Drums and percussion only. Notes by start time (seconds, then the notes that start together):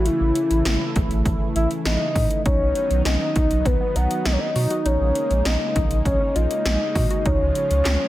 0.06 closed hi-hat
0.35 closed hi-hat
0.51 closed hi-hat
0.65 snare, closed hi-hat
0.96 kick, closed hi-hat
1.11 closed hi-hat
1.25 kick, closed hi-hat
1.56 closed hi-hat
1.71 closed hi-hat
1.85 snare, closed hi-hat
2.16 kick, open hi-hat
2.31 closed hi-hat
2.46 kick, closed hi-hat
2.75 closed hi-hat
2.91 closed hi-hat
3.05 snare, closed hi-hat
3.36 kick, closed hi-hat
3.51 closed hi-hat
3.65 kick, closed hi-hat
3.96 closed hi-hat
4.11 closed hi-hat
4.25 snare, closed hi-hat
4.56 open hi-hat
4.71 closed hi-hat
4.86 closed hi-hat
5.15 closed hi-hat
5.31 closed hi-hat
5.45 snare, closed hi-hat
5.76 kick, closed hi-hat
5.91 closed hi-hat
6.05 kick, closed hi-hat
6.36 closed hi-hat
6.51 closed hi-hat
6.66 snare, closed hi-hat
6.95 kick, open hi-hat
7.11 closed hi-hat
7.26 kick, closed hi-hat
7.55 closed hi-hat
7.71 closed hi-hat
7.85 snare, clap, closed hi-hat